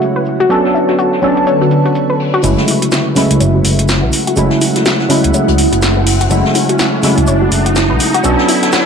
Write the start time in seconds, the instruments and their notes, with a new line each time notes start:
Already playing: synth stab C#3 F#3 G#3 A3 E4, ambient pad F#4 F#5, analog synth pad F#4 C#5 E5 F#5
0.02 closed hi-hat, shaker
0.16 synth pluck B4
0.25 shaker
0.40 synth pluck F#4, closed hi-hat
0.49 ambient pad D3, synth stab F#3 B3 C#4 D4 A4, synth pluck F#4, analog synth pad B4 A5, closed hi-hat, shaker
0.65 snare
0.69 ambient pad C#6
0.74 synth pluck E4, shaker
0.79 ambient pad B4
0.88 synth pluck F#4, snare, closed hi-hat
0.99 synth pluck F#4, closed hi-hat, shaker
1.13 snare
1.22 synth stab F#3 B3 C#4 D4 A4, synth pluck C#4, shaker
1.37 closed hi-hat
1.47 synth pluck C#5, closed hi-hat, shaker
1.61 synth pluck F#4, closed hi-hat
1.71 closed hi-hat, shaker
1.85 synth pluck F#4, closed hi-hat
1.95 closed hi-hat, shaker
2.10 synth pluck B4
2.19 open hi-hat
2.34 synth pluck F#4, closed hi-hat
2.43 analog synth bass F#1, synth stab C#3 F#3 G#3 A3 E4, ambient pad E4, synth pluck F#4, analog synth pad E5 F#5 G#5 A5, closed hi-hat, riser, shaker
2.58 snare
2.68 synth pluck E4, open hi-hat, shaker
2.76 ambient pad F#5
2.82 synth pluck F#4, closed hi-hat
2.92 synth pluck F#4, snare, closed hi-hat, shaker
3.15 synth stab C#3 F#3 G#3 A3 E4, synth pluck C#4, snare, open hi-hat, shaker
3.31 analog synth bass C#2, closed hi-hat
3.40 analog synth bass F#1, synth pluck C#5, closed hi-hat, shaker
3.55 synth pluck F#4
3.65 analog synth bass F#1, open hi-hat, shaker
3.79 synth pluck F#4, closed hi-hat
3.88 snare, closed hi-hat, shaker
4.03 analog synth bass B1, synth pluck B4
4.13 open hi-hat, shaker
4.27 synth pluck F#4, closed hi-hat
4.36 analog synth bass F#1, synth stab C#3 F#3 G#3 A3 E4, synth pluck F#4, closed hi-hat, shaker
4.50 snare
4.61 synth pluck E4, open hi-hat, shaker
4.76 synth pluck F#4, snare, closed hi-hat
4.86 synth pluck F#4, snare, closed hi-hat, shaker
4.99 snare
5.09 synth stab C#3 F#3 G#3 A3 E4, synth pluck C#4, open hi-hat, shaker
5.24 analog synth bass C#2, closed hi-hat
5.34 synth pluck C#5, closed hi-hat, shaker
5.48 analog synth bass C#2, synth pluck F#4, closed hi-hat
5.58 open hi-hat, shaker
5.73 analog synth bass F#1, synth pluck F#4, closed hi-hat
5.82 snare, closed hi-hat, shaker
5.97 synth pluck B4
6.06 open hi-hat
6.21 synth pluck F#4, closed hi-hat
6.30 analog synth bass F#1, synth stab C#3 F#3 G#3 A3 E4, synth pluck F#4, closed hi-hat, shaker
6.45 snare
6.55 synth pluck E4, open hi-hat, shaker
6.69 synth pluck F#4, closed hi-hat
6.79 synth pluck F#4, snare, closed hi-hat, shaker
7.02 synth stab C#3 F#3 G#3 A3 E4, synth pluck C#4, snare, open hi-hat, shaker
7.18 analog synth bass C#2, closed hi-hat
7.27 analog synth bass F#1, synth pluck C#5, closed hi-hat, shaker
7.42 synth pluck F#4
7.52 analog synth bass F#1, open hi-hat, shaker
7.66 synth pluck F#4, closed hi-hat
7.76 snare, closed hi-hat, shaker
7.90 analog synth bass B1, synth pluck B4
8.00 open hi-hat, shaker
8.14 synth pluck F#4, closed hi-hat
8.23 analog synth bass B1, ambient pad D3, synth stab F#3 B3 C#4 D4 A4, synth pluck F#4, analog synth pad B4 C#6, closed hi-hat, shaker
8.29 ambient pad B4
8.39 snare
8.48 synth pluck E4, open hi-hat, shaker
8.63 synth pluck F#4, snare, closed hi-hat
8.72 synth pluck F#4, snare, closed hi-hat, shaker